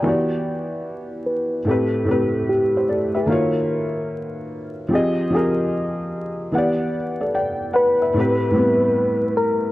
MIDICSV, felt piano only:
0, 0, Header, 1, 2, 480
1, 0, Start_track
1, 0, Key_signature, 1, "minor"
1, 0, Tempo, 810811
1, 25, Time_signature, 4, 2, 24, 8
1, 5754, End_track
2, 0, Start_track
2, 0, Title_t, "Felt piano"
2, 0, Program_c, 0, 0
2, 0, Control_c, 0, 64, 127
2, 0, Note_on_c, 0, 79, 62
2, 15, Note_on_c, 0, 52, 78
2, 26, Note_on_c, 0, 59, 59
2, 32, Control_c, 0, 64, 0
2, 33, Note_on_c, 0, 66, 67
2, 43, Note_on_c, 0, 67, 71
2, 51, Note_on_c, 0, 74, 69
2, 154, Control_c, 0, 64, 127
2, 177, Note_off_c, 0, 79, 0
2, 935, Note_off_c, 0, 52, 0
2, 940, Note_off_c, 0, 59, 0
2, 944, Note_off_c, 0, 66, 0
2, 949, Note_off_c, 0, 67, 0
2, 953, Note_off_c, 0, 74, 0
2, 975, Note_on_c, 0, 45, 68
2, 987, Note_on_c, 0, 57, 70
2, 992, Control_c, 0, 64, 0
2, 995, Note_on_c, 0, 60, 66
2, 1002, Note_on_c, 0, 67, 70
2, 1011, Note_on_c, 0, 71, 86
2, 1093, Control_c, 0, 64, 127
2, 1204, Note_off_c, 0, 45, 0
2, 1212, Note_off_c, 0, 57, 0
2, 1213, Note_on_c, 0, 45, 66
2, 1219, Note_off_c, 0, 60, 0
2, 1221, Note_on_c, 0, 57, 62
2, 1222, Note_off_c, 0, 67, 0
2, 1227, Note_off_c, 0, 71, 0
2, 1233, Note_on_c, 0, 60, 66
2, 1238, Note_on_c, 0, 67, 65
2, 1250, Note_on_c, 0, 71, 79
2, 1472, Note_off_c, 0, 67, 0
2, 1478, Note_off_c, 0, 71, 0
2, 1638, Note_on_c, 0, 72, 49
2, 1642, Note_on_c, 0, 67, 45
2, 1709, Note_off_c, 0, 72, 0
2, 1709, Note_on_c, 0, 74, 60
2, 1711, Note_off_c, 0, 67, 0
2, 1715, Note_on_c, 0, 69, 55
2, 1857, Note_off_c, 0, 74, 0
2, 1860, Note_off_c, 0, 69, 0
2, 1861, Note_on_c, 0, 76, 57
2, 1864, Note_on_c, 0, 71, 56
2, 1905, Note_off_c, 0, 45, 0
2, 1909, Note_off_c, 0, 57, 0
2, 1915, Note_off_c, 0, 60, 0
2, 1930, Note_on_c, 0, 51, 69
2, 1936, Note_on_c, 0, 58, 69
2, 1950, Note_on_c, 0, 65, 65
2, 1953, Control_c, 0, 64, 0
2, 1955, Note_on_c, 0, 66, 63
2, 1966, Note_on_c, 0, 73, 93
2, 2065, Control_c, 0, 64, 127
2, 2090, Note_off_c, 0, 76, 0
2, 2092, Note_off_c, 0, 71, 0
2, 2852, Note_off_c, 0, 51, 0
2, 2856, Note_off_c, 0, 58, 0
2, 2862, Note_off_c, 0, 65, 0
2, 2865, Note_off_c, 0, 66, 0
2, 2870, Note_off_c, 0, 73, 0
2, 2891, Note_on_c, 0, 53, 80
2, 2902, Note_on_c, 0, 60, 69
2, 2910, Note_on_c, 0, 67, 72
2, 2913, Control_c, 0, 64, 0
2, 2920, Note_on_c, 0, 68, 73
2, 2930, Note_on_c, 0, 75, 99
2, 3018, Control_c, 0, 64, 127
2, 3127, Note_off_c, 0, 53, 0
2, 3132, Note_off_c, 0, 60, 0
2, 3136, Note_off_c, 0, 67, 0
2, 3139, Note_on_c, 0, 53, 72
2, 3141, Note_off_c, 0, 68, 0
2, 3146, Note_off_c, 0, 75, 0
2, 3147, Note_on_c, 0, 60, 59
2, 3155, Note_on_c, 0, 67, 64
2, 3165, Note_on_c, 0, 68, 80
2, 3175, Note_on_c, 0, 70, 81
2, 3828, Note_off_c, 0, 53, 0
2, 3832, Note_off_c, 0, 60, 0
2, 3836, Note_off_c, 0, 67, 0
2, 3841, Note_off_c, 0, 68, 0
2, 3846, Note_off_c, 0, 70, 0
2, 3858, Note_on_c, 0, 52, 72
2, 3867, Note_on_c, 0, 59, 67
2, 3872, Control_c, 0, 64, 0
2, 3876, Note_on_c, 0, 78, 68
2, 3885, Note_on_c, 0, 67, 68
2, 3896, Note_on_c, 0, 74, 83
2, 3962, Control_c, 0, 64, 127
2, 4121, Note_off_c, 0, 74, 0
2, 4267, Note_on_c, 0, 74, 56
2, 4269, Note_on_c, 0, 69, 48
2, 4341, Note_off_c, 0, 74, 0
2, 4344, Note_off_c, 0, 69, 0
2, 4349, Note_on_c, 0, 79, 67
2, 4350, Note_on_c, 0, 74, 52
2, 4569, Note_off_c, 0, 78, 0
2, 4575, Note_off_c, 0, 79, 0
2, 4576, Note_off_c, 0, 74, 0
2, 4578, Note_on_c, 0, 78, 66
2, 4580, Note_on_c, 0, 71, 58
2, 4731, Note_off_c, 0, 78, 0
2, 4732, Note_off_c, 0, 71, 0
2, 4747, Note_on_c, 0, 76, 59
2, 4748, Note_on_c, 0, 71, 52
2, 4776, Note_off_c, 0, 52, 0
2, 4781, Note_off_c, 0, 59, 0
2, 4790, Note_off_c, 0, 67, 0
2, 4817, Note_on_c, 0, 45, 86
2, 4826, Note_on_c, 0, 57, 70
2, 4832, Control_c, 0, 64, 0
2, 4836, Note_on_c, 0, 60, 78
2, 4845, Note_off_c, 0, 71, 0
2, 4847, Note_on_c, 0, 67, 82
2, 4854, Note_on_c, 0, 71, 90
2, 4928, Control_c, 0, 64, 127
2, 4973, Note_off_c, 0, 76, 0
2, 5029, Note_off_c, 0, 45, 0
2, 5037, Note_on_c, 0, 45, 74
2, 5047, Note_on_c, 0, 55, 67
2, 5048, Note_off_c, 0, 60, 0
2, 5054, Note_off_c, 0, 57, 0
2, 5056, Note_on_c, 0, 60, 70
2, 5057, Note_off_c, 0, 67, 0
2, 5065, Note_on_c, 0, 67, 62
2, 5068, Note_off_c, 0, 71, 0
2, 5075, Note_on_c, 0, 59, 72
2, 5737, Note_off_c, 0, 45, 0
2, 5742, Note_off_c, 0, 55, 0
2, 5747, Note_off_c, 0, 60, 0
2, 5751, Note_off_c, 0, 67, 0
2, 5754, Note_off_c, 0, 59, 0
2, 5754, End_track
0, 0, End_of_file